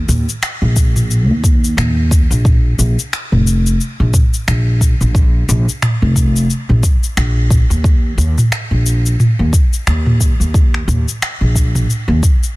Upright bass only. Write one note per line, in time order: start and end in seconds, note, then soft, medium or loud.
0.08 0.25 D#2 medium
0.62 1.30 A#1 medium
1.30 1.73 D#2 medium
1.77 2.25 D#2 medium
2.30 2.74 A#1 medium
2.79 2.94 A#1 medium
3.32 3.75 F1 medium
4.00 4.11 A#1 medium
4.48 4.95 A#1 medium
5.01 5.44 A#1 medium
5.49 5.64 A#1 loud
6.02 6.45 F1 medium
6.70 6.81 A#1 medium
7.17 7.64 A#1 medium
7.70 8.14 D#2 medium
8.18 8.34 D#2 loud
8.71 9.15 A#1 medium
9.39 9.50 D#2 medium
9.87 10.34 D#2 medium
10.40 10.83 D#2 medium
10.88 11.03 D#2 loud
11.41 11.84 A#1 medium
12.08 12.20 D#2 loud